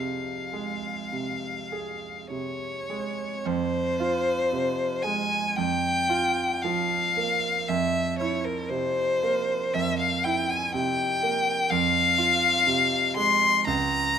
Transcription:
0.00 1.09 F2 soft
0.00 0.89 C3 soft
0.00 0.31 G#4 soft
0.00 2.31 F5 medium
0.53 1.48 G#3 soft
1.12 2.07 C3 soft
1.72 2.66 G#4 soft
2.30 3.24 C3 soft
2.30 3.48 C#5 medium
2.89 3.46 G#3 soft
3.45 5.52 F2 medium
3.45 5.04 C5 medium
4.00 4.83 F4 soft
4.52 5.35 C3 soft
5.02 5.56 G#3 soft
5.02 5.57 G#5 medium
5.56 7.66 F2 medium
5.56 6.64 G5 medium
6.09 6.96 F4 soft
6.62 7.49 F3 soft
6.62 7.70 F5 medium
7.16 7.68 A#3 soft
7.68 9.69 F2 medium
7.68 8.19 E5 medium
8.19 9.02 E4 medium
8.19 8.46 C#5 medium
8.45 8.71 A#4 medium
8.69 9.53 C3 soft
8.69 9.75 C5 medium
9.23 10.05 A#3 medium
9.74 11.67 F2 medium
9.74 9.98 E5 medium
9.99 10.25 F5 medium
10.24 11.03 E4 medium
10.24 10.51 G5 medium
10.50 10.74 G#5 medium
10.74 11.51 C3 medium
10.74 11.72 G5 medium
11.22 11.70 A#3 soft
11.70 13.64 F2 medium
11.70 13.16 F5 loud
12.18 12.97 F4 medium
12.67 13.47 C3 medium
13.16 13.67 G#3 soft
13.16 13.67 C6 loud
13.67 14.19 C#2 medium
13.67 14.19 A#5 loud

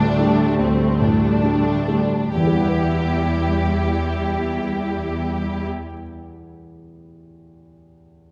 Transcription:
0.00 0.55 D2 soft
0.00 2.05 D2 soft
0.00 1.01 A2 soft
0.00 2.28 D3 soft
0.00 0.14 G3 soft
0.00 2.04 G3 soft
0.00 2.77 G3 soft
0.00 2.05 A3 soft
0.00 0.15 D4 soft
0.00 0.56 D4 medium
0.00 2.33 D4 soft
0.00 0.15 A4 soft
0.00 2.35 A4 soft
0.19 0.84 G3 soft
0.59 2.29 D2 soft
0.59 1.01 C4 medium
1.00 1.70 A2 soft
1.00 2.33 D4 soft
1.43 1.84 G3 soft
1.43 1.84 D4 soft
1.43 1.85 A4 soft
1.88 2.33 G3 soft
2.32 5.64 E2 soft
2.32 5.65 E2 soft
2.32 6.24 E3 soft
2.32 5.67 G3 soft
2.32 5.66 E4 soft
2.32 5.66 G4 soft
2.40 5.72 E3 soft
2.47 5.79 G3 soft
2.47 5.79 B3 soft
2.54 5.86 B3 soft
2.54 5.87 E4 soft
2.61 5.93 E4 soft
2.61 5.94 B4 soft
2.68 6.00 B4 soft

